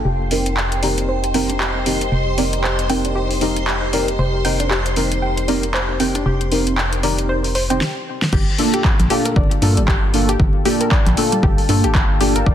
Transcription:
Already playing: ambient pad G5
0.05 fm bass F1, ambient pad G4 D#5, synth pluck G4, string machine C5 C6
0.31 synth stab C4 D#4 G4 A#4, open hi-hat
0.46 closed hi-hat
0.57 synth pluck G5, clap
0.72 closed hi-hat
0.82 synth stab C4 D#4 G4 A#4, synth pluck D5, open hi-hat
0.98 closed hi-hat
1.09 synth pluck C5
1.24 closed hi-hat
1.34 synth stab C4 D#4 G4 A#4, synth pluck G5, open hi-hat
1.50 synth pluck D4, closed hi-hat
1.60 synth pluck G4, clap
1.86 synth stab C4 D#4 G4 A#4, open hi-hat
2.01 closed hi-hat
2.12 fm bass F1, synth pluck G5
2.37 synth stab C4 D#4 G4 A#4, synth pluck D5, open hi-hat
2.53 closed hi-hat
2.64 synth pluck C5, clap
2.79 closed hi-hat
2.89 synth stab C4 D#4 G4 A#4, synth pluck G5, open hi-hat
3.05 synth pluck D4, closed hi-hat
3.15 synth pluck G4
3.31 open hi-hat
3.41 synth stab C4 D#4 G4 A#4, open hi-hat
3.56 closed hi-hat
3.67 synth pluck G5, clap
3.93 synth stab C4 D#4 G4 A#4, synth pluck D5, open hi-hat
4.08 closed hi-hat
4.19 fm bass F1, synth pluck C5
4.44 synth stab C4 D#4 G4 A#4, synth pluck G5, open hi-hat
4.60 synth pluck D4, closed hi-hat
4.71 synth pluck G4, clap
4.86 closed hi-hat
4.96 synth stab C4 D#4 G4 A#4, open hi-hat
5.12 closed hi-hat
5.22 synth pluck G5
5.38 closed hi-hat
5.48 synth stab C4 D#4 G4 A#4, synth pluck D5, open hi-hat
5.63 closed hi-hat
5.74 synth pluck C5, clap
5.99 synth stab C4 D#4 G4 A#4, synth pluck G5, open hi-hat
6.15 synth pluck D4, closed hi-hat
6.26 fm bass F1, synth pluck G4
6.41 closed hi-hat
6.51 synth stab C4 D#4 G4 A#4, open hi-hat
6.67 closed hi-hat
6.77 synth pluck G5, clap
6.93 closed hi-hat
7.03 synth stab C4 D#4 G4 A#4, synth pluck D5, open hi-hat
7.18 closed hi-hat
7.29 synth pluck C5
7.44 open hi-hat
7.55 synth pluck C5, open hi-hat
7.70 synth stab C4 D#4 G4 C5, synth pluck G5, closed hi-hat
7.81 snare
8.22 snare
8.33 fm bass G1, synth pluck G4, ambient pad F5 G5 A5, kick, crash
8.58 synth stab A#3 D4 F4 A4, open hi-hat
8.74 synth pluck G4, closed hi-hat
8.84 kick, clap
9.00 fm bass A#1, closed hi-hat
9.10 synth stab A#3 D4 F4 A4, synth pluck G4, open hi-hat
9.25 synth pluck A#4, closed hi-hat
9.36 fm bass G1, synth pluck D5, kick
9.51 closed hi-hat
9.62 fm bass G2, synth stab A#3 D4 F4 A4, open hi-hat
9.77 fm bass G1, synth pluck G3, closed hi-hat
9.88 synth pluck G4, kick, clap
10.13 synth stab A#3 D4 F4 A4, open hi-hat
10.29 synth pluck G4, closed hi-hat
10.40 fm bass G1, kick
10.65 synth stab A#3 D4 F4 A4, synth pluck G4, open hi-hat
10.81 synth pluck A#4, closed hi-hat
10.91 synth pluck D5, kick, clap
11.06 fm bass A#1, clap, closed hi-hat
11.17 synth stab A#3 D4 F4 A4, open hi-hat
11.32 synth pluck G3, closed hi-hat
11.43 fm bass G1, synth pluck G4, kick
11.58 open hi-hat
11.68 fm bass G2, synth stab A#3 D4 F4 A4, open hi-hat
11.84 fm bass G1, synth pluck G4, closed hi-hat
11.95 kick, clap
12.20 synth stab A#3 D4 F4 A4, synth pluck G4, open hi-hat
12.36 synth pluck A#4, closed hi-hat
12.46 fm bass G1, synth pluck D5, kick

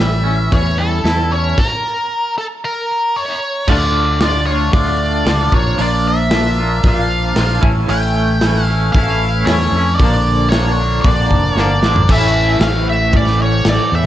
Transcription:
Already playing: fingered electric bass A1, clean electric guitar A2 E3, lead electric guitar E5
0.00 clean electric guitar G3
0.24 clean electric guitar C#4
0.51 fingered electric bass E2, clean electric guitar E3, lead electric guitar C#5, kick, open hi-hat
0.78 clean electric guitar G3, lead electric guitar A4
1.04 fingered electric bass E2, clean electric guitar E4, snare, open hi-hat
1.31 clean electric guitar C#4, lead electric guitar C#5
1.58 lead electric guitar A#4, kick, crash
2.38 lead electric guitar A4
2.65 lead electric guitar A#4
3.16 lead electric guitar C#5
3.68 fingered electric bass D2, clean electric guitar D3 A3 D4 F4, lead electric guitar D5, kick, crash
4.21 clean electric guitar D3 A3 D4 F4, lead electric guitar D5, snare, open hi-hat
4.46 clean electric guitar A3 D4 F4, lead electric guitar C#5
4.71 fingered electric bass D2, clean electric guitar D3 A3 D4 F4, lead electric guitar D5, kick, open hi-hat
5.25 fingered electric bass C#2, clean electric guitar D3 A3 D4 F4, snare, open hi-hat
5.52 fingered electric bass A#1, clean electric guitar A#2 F3 A#3 D4 F4, lead electric guitar C#5, kick
5.77 fingered electric bass A#1, clean electric guitar A#2 F3 A#3 D4 F4, open hi-hat
5.82 lead electric guitar D5
6.07 lead electric guitar E5
6.31 clean electric guitar F3 A#3 D4 F4, snare, open hi-hat
6.58 clean electric guitar A#3 D4 F4
6.83 fingered electric bass A#1, clean electric guitar A#2 F3 A#3 D4 F4, kick, open hi-hat
6.88 lead electric guitar F5
7.36 fingered electric bass A#1, clean electric guitar F3 A#3 D4 F4, snare, open hi-hat
7.61 fingered electric bass A1, clean electric guitar A2 E3 A3 C#4 E4, kick
7.88 fingered electric bass A1, clean electric guitar A2 E3 A3 C#4 E4, lead electric guitar G5, open hi-hat
8.40 clean electric guitar E3 A3 C#4 E4, snare, open hi-hat
8.65 clean electric guitar C#4 E4, lead electric guitar F5
8.69 clean electric guitar A3
8.92 fingered electric bass A1, clean electric guitar A2 E3 A3 C#4, lead electric guitar F5, kick, open hi-hat
8.96 clean electric guitar E4
9.46 fingered electric bass E2, clean electric guitar E3 A3, lead electric guitar C#5, snare, open hi-hat
9.50 clean electric guitar C#4 E4
9.72 fingered electric bass F2, clean electric guitar E4
9.77 clean electric guitar A3 C#4
9.94 lead electric guitar D5
9.99 fingered electric bass A#1, clean electric guitar A#2 D3 F3 A#3, kick, open hi-hat
10.03 clean electric guitar D4
10.49 clean electric guitar D3 F3, lead electric guitar C#5, snare, open hi-hat
10.53 clean electric guitar A#3 D4
10.79 clean electric guitar F3 A#3 D4
11.01 fingered electric bass A#1, clean electric guitar A#2 D3, lead electric guitar D5, kick, open hi-hat
11.05 clean electric guitar F3 A#3 D4
11.30 fingered electric bass F1, kick
11.55 fingered electric bass G1, clean electric guitar D3 F3 A#3 D4, snare
11.61 lead electric guitar D5
11.82 fingered electric bass A1, clean electric guitar F3 A#3 D4, snare
11.96 floor tom
12.08 fingered electric bass A1, clean electric guitar A2 E3 A3 C#4 E4, lead electric guitar E5, kick, crash
12.60 fingered electric bass A1, lead electric guitar F5, snare, crash
12.89 lead electric guitar E5
13.13 lead electric guitar D5, kick, crash
13.27 snare
13.42 lead electric guitar C#5
13.65 fingered electric bass A1, lead electric guitar D5, snare, crash
13.92 fingered electric bass E2, lead electric guitar E5

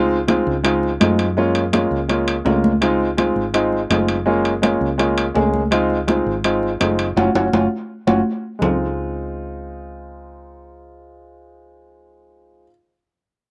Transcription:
Already playing: fingered electric bass C#2, grand piano G#3 C4 D#4 F4
0.11 high conga
0.28 grand piano G#3 C4 D#4 F4, high conga, high timbale, low timbale
0.47 fingered electric bass C#2, high conga
0.64 grand piano G#3 C4 D#4 F4, high conga, high timbale
0.83 high conga
1.00 fingered electric bass F#2, grand piano G#3 C4 D#4 F4, high conga, high timbale, low timbale
1.19 high conga, high timbale
1.37 grand piano G#3 A#3 C#4 F4, high conga
1.55 high conga, high timbale
1.73 grand piano G#3 A#3 C#4 F4, high conga, high timbale, low timbale
1.91 fingered electric bass C#2, high conga
2.08 grand piano G#3 A#3 C#4 F4, high conga, high timbale
2.28 high conga, high timbale
2.45 fingered electric bass C#2, grand piano G#3 A#3 C#4 F4, high conga, low timbale
2.64 high conga
2.81 grand piano G#3 C4 D#4 F4, high timbale
3.00 high conga
3.17 grand piano G#3 C4 D#4 F4, high conga, high timbale, low timbale
3.36 fingered electric bass G#1, high conga
3.54 grand piano G#3 C4 D#4 F4, high conga, high timbale
3.72 high conga
3.90 fingered electric bass F#1, grand piano G#3 C4 D#4 F4, high conga, high timbale, low timbale
4.08 high conga, high timbale
4.26 grand piano G#3 A#3 C#4 F4, high conga
4.45 high conga, high timbale
4.62 grand piano G#3 A#3 C#4 F4, high conga, high timbale, low timbale
4.81 fingered electric bass C#2, high conga
4.98 grand piano G#3 A#3 C#4 F4, high conga, high timbale
5.18 high conga, high timbale
5.34 fingered electric bass C#2, grand piano G#3 A#3 C#4 G#4, high conga, low timbale
5.54 high conga
5.71 grand piano G#3 C4 D#4 F4, high conga, high timbale
5.90 high conga
6.07 grand piano G#3 C4 D#4 F4, high conga, high timbale, low timbale
6.26 fingered electric bass G#1, high conga
6.44 grand piano G#3 C4 D#4 F4, high conga, high timbale
6.63 high conga
6.80 fingered electric bass F#1, grand piano G#3 C4 D#4 F4, high conga, high timbale, low timbale
6.99 high timbale
7.16 fingered electric bass F#1, grand piano C#4 F4 F#4, high conga, high timbale
7.35 fingered electric bass F#1, grand piano C#4 F4 F#4, high conga, high timbale
7.53 fingered electric bass F#1, grand piano C#4 F4 F#4, high conga, high timbale
8.07 fingered electric bass F#1, grand piano C#4 F4 F#4, high conga, high timbale
8.59 fingered electric bass C#2, grand piano G#3 C4 D#4, low conga, low timbale
8.64 grand piano F4

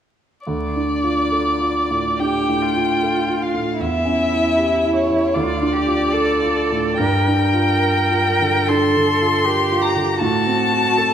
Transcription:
0.47 grand piano D2, violin D5
0.76 grand piano D4
1.03 grand piano F4
1.32 grand piano A4
1.60 grand piano F4
1.90 grand piano A2
2.19 grand piano D4, cello G4, violin G5
2.49 grand piano A2
2.62 cello F4
2.75 grand piano F4
3.03 grand piano A4
3.29 grand piano F4
3.42 violin F5
3.54 grand piano A2
3.79 grand piano E2, cello E4, violin E5
4.05 grand piano C#4
4.31 grand piano E4
4.57 grand piano G4
4.83 grand piano E4
4.95 violin C#5
5.09 grand piano E3
5.34 grand piano D2, cello F4, violin D5
5.62 grand piano D4
5.73 cello G4
5.87 grand piano F4
6.12 cello A4, grand piano A4
6.41 grand piano F4
6.72 grand piano A2
6.98 grand piano G2, cello A#4, violin G5
7.28 grand piano D4
7.38 cello A#4
7.53 grand piano F4
7.81 grand piano A#4
8.10 grand piano F4
8.41 grand piano D3
8.68 grand piano D4, cello A4, violin C6
8.96 grand piano D3
9.21 grand piano F4
9.45 cello G4, grand piano A#4
9.72 grand piano F4
9.82 violin A#5
9.96 grand piano D3
10.20 grand piano A2, cello F#4, violin A5
10.47 grand piano C4
10.72 grand piano F#4
10.98 cello A4, grand piano A4

